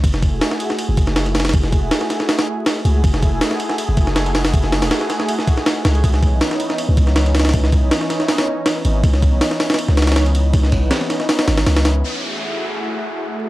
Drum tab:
RD |x---x-------x---x---x---x-x-----|x---x---x---x-----------x---x---|x---x-------x---x---x---x-x-----|x-------x---x---x---x---x---x-x-|
HH |--------o-------------------oooo|----------------o-o-------------|--------o-------------------o-o-|----o-o-------------------------|
SD |--o-----o-o---o-------o-o---oooo|--o-----o-o-o-o-o-o-----o-------|--o-----o-o---o-------o-o---o-o-|--o-o-o-o-o-o-o---o---o-o---o---|
BD |o---o---------------o-----------|o---o---------------------------|o---o---------------o-----------|o-------------------o-----------|

RD |x---x-------x---x---x---x-x-----|x---x---x---x-----------x---x---|x---x-----------x-------x-x-x---|x---x---x---x-------------------|
HH |--------o-------------------oooo|----------------o-o-------------|--------o---o-oo----oooo--------|----------------o-o-o-o-o-o-o---|
SD |--o-----o-o---o-------o-o---oooo|--o-----o-o-o-o-o-o-----o-------|--o-----o-o-o-oo--o-ooooo-------|--o-----o-o-o-o-o-o-o-o-o-o-o---|
BD |o---o---------------o-----------|o---o---------------------------|o---o---------------------------|o---o---------------------------|

RD |--------------------------------|
HH |--------------------------------|
SD |--------------------------------|
BD |--------------------------------|